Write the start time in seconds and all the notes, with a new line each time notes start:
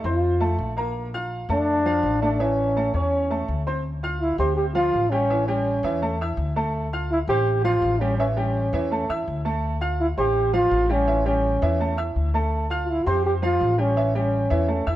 0.04 F2 C4 F4 C5 C6
0.40 A3 A4 A5
0.58 A#1
0.76 A#3 A#4 A#5
1.14 F4 F5 F6
1.49 F2 A3 D4 A4 A5
1.85 F3 F4 F5
2.03 A1
2.22 A3 D4 A4 A5
2.33 D4
2.39 E3 C#4 E4 E5
2.76 A3 A4 A5
2.94 E2 C#4 C#5 C#6
3.30 A3 A4 A5
3.48 D2
3.66 C4 C5 C6
4.03 F4 F5 F6
4.21 E4
4.38 D2 C4 G4 C5 C6
4.56 G4
4.74 F3 F4 F5
4.93 A1
5.10 G3 C#4 G4 G5
5.30 E3 E4 E5
5.47 G3 C#4 G4 G5
5.83 E2 E3 E4 E5
6.02 A3 A4 A5
6.21 E4 E5 E6
6.37 D2
6.56 A3 A4 A5
6.93 F4 F5 F6
7.11 E4
7.28 A1 C4 G4 C5 C6
7.64 F3 F4 F5
7.82 A1
8.00 G3 C#4 G4 G5
8.18 E3 C#4 E4 E5
8.36 G3 C#4 G4 G5
8.73 E2 E3 E4 E5
8.91 A3 A4 A5
9.09 E2 E4 E5 E6
9.27 D2
9.45 A3 A4 A5
9.81 F4 F5 F6
10.00 E4
10.17 A1 C4 G4 C5 C6
10.53 F3 F4 F5
10.71 A1
10.90 G3 C#4 G4 G5
11.07 E3 E4 E5
11.26 G3 C#4 G4 G5
11.62 E2 E3 E4 E5
11.80 A3 A4 A5
11.97 E4 E5 E6
12.16 D2
12.34 A3 A4 A5
12.70 F4 F5 F6
12.85 F4
12.90 E4
13.06 F2 C4 G4 C5 C6
13.26 G4
13.42 F3 F4 F5
13.61 A1
13.78 G3 C#4 G4 G5
13.96 E3 E4 E5
14.15 G3 C#4 G4 G5
14.50 E2 E3 E4 E5
14.68 A3 A4 A5
14.87 E2 E4 E5 E6